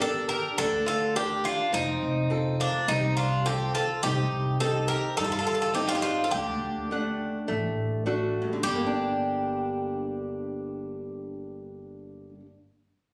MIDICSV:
0, 0, Header, 1, 5, 480
1, 0, Start_track
1, 0, Key_signature, -2, "minor"
1, 0, Tempo, 575264
1, 1444, Time_signature, 4, 2, 24, 8
1, 10959, End_track
2, 0, Start_track
2, 0, Title_t, "Bouzouki"
2, 0, Program_c, 0, 25
2, 12, Note_on_c, 0, 69, 91
2, 238, Note_off_c, 0, 69, 0
2, 241, Note_on_c, 0, 70, 86
2, 466, Note_off_c, 0, 70, 0
2, 485, Note_on_c, 0, 69, 106
2, 708, Note_off_c, 0, 69, 0
2, 732, Note_on_c, 0, 69, 92
2, 966, Note_off_c, 0, 69, 0
2, 969, Note_on_c, 0, 67, 91
2, 1209, Note_on_c, 0, 65, 87
2, 1214, Note_off_c, 0, 67, 0
2, 1430, Note_off_c, 0, 65, 0
2, 1451, Note_on_c, 0, 63, 92
2, 2175, Note_on_c, 0, 62, 81
2, 2189, Note_off_c, 0, 63, 0
2, 2407, Note_on_c, 0, 63, 95
2, 2417, Note_off_c, 0, 62, 0
2, 2639, Note_off_c, 0, 63, 0
2, 2643, Note_on_c, 0, 65, 85
2, 2886, Note_on_c, 0, 67, 93
2, 2891, Note_off_c, 0, 65, 0
2, 3108, Note_off_c, 0, 67, 0
2, 3126, Note_on_c, 0, 69, 96
2, 3349, Note_off_c, 0, 69, 0
2, 3362, Note_on_c, 0, 67, 101
2, 3810, Note_off_c, 0, 67, 0
2, 3841, Note_on_c, 0, 69, 96
2, 4068, Note_off_c, 0, 69, 0
2, 4072, Note_on_c, 0, 70, 88
2, 4301, Note_off_c, 0, 70, 0
2, 4314, Note_on_c, 0, 69, 102
2, 4365, Note_off_c, 0, 69, 0
2, 4375, Note_on_c, 0, 69, 75
2, 4428, Note_off_c, 0, 69, 0
2, 4438, Note_on_c, 0, 69, 78
2, 4485, Note_off_c, 0, 69, 0
2, 4495, Note_on_c, 0, 69, 73
2, 4551, Note_off_c, 0, 69, 0
2, 4561, Note_on_c, 0, 69, 78
2, 4619, Note_off_c, 0, 69, 0
2, 4629, Note_on_c, 0, 69, 69
2, 4678, Note_off_c, 0, 69, 0
2, 4688, Note_on_c, 0, 69, 75
2, 4751, Note_off_c, 0, 69, 0
2, 4794, Note_on_c, 0, 67, 84
2, 4911, Note_on_c, 0, 65, 87
2, 4923, Note_off_c, 0, 67, 0
2, 4965, Note_on_c, 0, 67, 75
2, 4978, Note_off_c, 0, 65, 0
2, 5026, Note_on_c, 0, 65, 91
2, 5032, Note_off_c, 0, 67, 0
2, 5206, Note_on_c, 0, 69, 67
2, 5264, Note_off_c, 0, 69, 0
2, 5268, Note_on_c, 0, 67, 86
2, 5284, Note_off_c, 0, 65, 0
2, 6923, Note_off_c, 0, 67, 0
2, 7203, Note_on_c, 0, 67, 85
2, 10344, Note_off_c, 0, 67, 0
2, 10959, End_track
3, 0, Start_track
3, 0, Title_t, "Bouzouki"
3, 0, Program_c, 1, 25
3, 4, Note_on_c, 1, 62, 78
3, 228, Note_off_c, 1, 62, 0
3, 239, Note_on_c, 1, 67, 87
3, 465, Note_off_c, 1, 67, 0
3, 482, Note_on_c, 1, 62, 80
3, 707, Note_off_c, 1, 62, 0
3, 720, Note_on_c, 1, 65, 81
3, 945, Note_off_c, 1, 65, 0
3, 971, Note_on_c, 1, 62, 73
3, 1191, Note_off_c, 1, 62, 0
3, 1201, Note_on_c, 1, 62, 76
3, 1426, Note_off_c, 1, 62, 0
3, 1440, Note_on_c, 1, 60, 71
3, 2129, Note_off_c, 1, 60, 0
3, 2169, Note_on_c, 1, 58, 69
3, 2390, Note_off_c, 1, 58, 0
3, 2411, Note_on_c, 1, 60, 74
3, 2631, Note_off_c, 1, 60, 0
3, 2659, Note_on_c, 1, 62, 78
3, 2875, Note_off_c, 1, 62, 0
3, 2896, Note_on_c, 1, 60, 70
3, 3114, Note_off_c, 1, 60, 0
3, 3125, Note_on_c, 1, 65, 76
3, 3348, Note_off_c, 1, 65, 0
3, 3371, Note_on_c, 1, 63, 84
3, 3814, Note_off_c, 1, 63, 0
3, 3845, Note_on_c, 1, 63, 74
3, 4068, Note_off_c, 1, 63, 0
3, 4085, Note_on_c, 1, 67, 81
3, 4308, Note_off_c, 1, 67, 0
3, 4325, Note_on_c, 1, 63, 80
3, 4382, Note_off_c, 1, 63, 0
3, 4387, Note_on_c, 1, 65, 57
3, 4432, Note_off_c, 1, 65, 0
3, 4442, Note_on_c, 1, 65, 69
3, 4500, Note_off_c, 1, 65, 0
3, 4510, Note_on_c, 1, 65, 56
3, 4553, Note_off_c, 1, 65, 0
3, 4563, Note_on_c, 1, 65, 70
3, 4614, Note_off_c, 1, 65, 0
3, 4624, Note_on_c, 1, 65, 61
3, 4676, Note_off_c, 1, 65, 0
3, 4686, Note_on_c, 1, 65, 74
3, 4750, Note_off_c, 1, 65, 0
3, 4786, Note_on_c, 1, 63, 75
3, 4899, Note_off_c, 1, 63, 0
3, 4902, Note_on_c, 1, 62, 72
3, 4956, Note_off_c, 1, 62, 0
3, 4959, Note_on_c, 1, 63, 61
3, 5019, Note_off_c, 1, 63, 0
3, 5022, Note_on_c, 1, 62, 70
3, 5205, Note_off_c, 1, 62, 0
3, 5208, Note_on_c, 1, 65, 55
3, 5258, Note_off_c, 1, 65, 0
3, 5262, Note_on_c, 1, 62, 68
3, 6920, Note_off_c, 1, 62, 0
3, 7203, Note_on_c, 1, 62, 67
3, 10344, Note_off_c, 1, 62, 0
3, 10959, End_track
4, 0, Start_track
4, 0, Title_t, "Steel-string acoustic guitar"
4, 0, Program_c, 2, 25
4, 0, Note_on_c, 2, 62, 50
4, 4, Note_on_c, 2, 67, 46
4, 5, Note_on_c, 2, 70, 58
4, 385, Note_off_c, 2, 62, 0
4, 386, Note_off_c, 2, 67, 0
4, 389, Note_off_c, 2, 70, 0
4, 484, Note_on_c, 2, 50, 64
4, 950, Note_off_c, 2, 50, 0
4, 961, Note_on_c, 2, 62, 52
4, 965, Note_on_c, 2, 67, 48
4, 970, Note_on_c, 2, 70, 59
4, 1346, Note_off_c, 2, 62, 0
4, 1349, Note_off_c, 2, 67, 0
4, 1352, Note_off_c, 2, 70, 0
4, 1451, Note_on_c, 2, 53, 72
4, 1913, Note_off_c, 2, 53, 0
4, 1919, Note_on_c, 2, 60, 53
4, 1924, Note_on_c, 2, 65, 46
4, 1927, Note_on_c, 2, 69, 56
4, 2305, Note_off_c, 2, 60, 0
4, 2308, Note_off_c, 2, 65, 0
4, 2310, Note_off_c, 2, 69, 0
4, 2401, Note_on_c, 2, 48, 64
4, 2868, Note_off_c, 2, 48, 0
4, 2877, Note_on_c, 2, 60, 54
4, 2882, Note_on_c, 2, 65, 51
4, 2886, Note_on_c, 2, 69, 60
4, 3265, Note_off_c, 2, 60, 0
4, 3266, Note_off_c, 2, 65, 0
4, 3266, Note_off_c, 2, 69, 0
4, 3367, Note_on_c, 2, 48, 74
4, 3831, Note_off_c, 2, 48, 0
4, 3839, Note_on_c, 2, 60, 50
4, 3844, Note_on_c, 2, 63, 48
4, 3846, Note_on_c, 2, 67, 56
4, 4225, Note_off_c, 2, 60, 0
4, 4228, Note_off_c, 2, 63, 0
4, 4228, Note_off_c, 2, 67, 0
4, 4322, Note_on_c, 2, 55, 61
4, 4789, Note_off_c, 2, 55, 0
4, 4797, Note_on_c, 2, 60, 52
4, 4801, Note_on_c, 2, 63, 48
4, 4805, Note_on_c, 2, 67, 59
4, 5184, Note_off_c, 2, 60, 0
4, 5187, Note_off_c, 2, 63, 0
4, 5189, Note_off_c, 2, 67, 0
4, 5280, Note_on_c, 2, 50, 70
4, 5748, Note_off_c, 2, 50, 0
4, 5766, Note_on_c, 2, 57, 52
4, 5770, Note_on_c, 2, 62, 44
4, 5775, Note_on_c, 2, 78, 57
4, 6149, Note_off_c, 2, 57, 0
4, 6152, Note_off_c, 2, 62, 0
4, 6155, Note_off_c, 2, 78, 0
4, 6241, Note_on_c, 2, 57, 67
4, 6709, Note_off_c, 2, 57, 0
4, 6724, Note_on_c, 2, 57, 51
4, 6728, Note_on_c, 2, 62, 47
4, 6732, Note_on_c, 2, 66, 57
4, 7023, Note_on_c, 2, 43, 59
4, 7109, Note_off_c, 2, 57, 0
4, 7111, Note_off_c, 2, 62, 0
4, 7113, Note_off_c, 2, 66, 0
4, 7115, Note_on_c, 2, 50, 52
4, 7208, Note_on_c, 2, 55, 55
4, 7302, Note_on_c, 2, 58, 55
4, 7396, Note_on_c, 2, 62, 61
4, 10254, Note_off_c, 2, 43, 0
4, 10300, Note_off_c, 2, 50, 0
4, 10346, Note_off_c, 2, 55, 0
4, 10393, Note_off_c, 2, 58, 0
4, 10440, Note_off_c, 2, 62, 0
4, 10959, End_track
5, 0, Start_track
5, 0, Title_t, "Upright bass"
5, 0, Program_c, 3, 32
5, 0, Note_on_c, 3, 31, 82
5, 269, Note_off_c, 3, 31, 0
5, 485, Note_on_c, 3, 38, 90
5, 1157, Note_off_c, 3, 38, 0
5, 1445, Note_on_c, 3, 29, 99
5, 1613, Note_off_c, 3, 29, 0
5, 1689, Note_on_c, 3, 29, 90
5, 2191, Note_off_c, 3, 29, 0
5, 2401, Note_on_c, 3, 36, 95
5, 3074, Note_off_c, 3, 36, 0
5, 3365, Note_on_c, 3, 36, 98
5, 3533, Note_off_c, 3, 36, 0
5, 3602, Note_on_c, 3, 36, 85
5, 4107, Note_off_c, 3, 36, 0
5, 4327, Note_on_c, 3, 43, 89
5, 4998, Note_off_c, 3, 43, 0
5, 5286, Note_on_c, 3, 38, 100
5, 5453, Note_off_c, 3, 38, 0
5, 5525, Note_on_c, 3, 38, 85
5, 6029, Note_off_c, 3, 38, 0
5, 6252, Note_on_c, 3, 33, 88
5, 6922, Note_off_c, 3, 33, 0
5, 7204, Note_on_c, 3, 31, 96
5, 10344, Note_off_c, 3, 31, 0
5, 10959, End_track
0, 0, End_of_file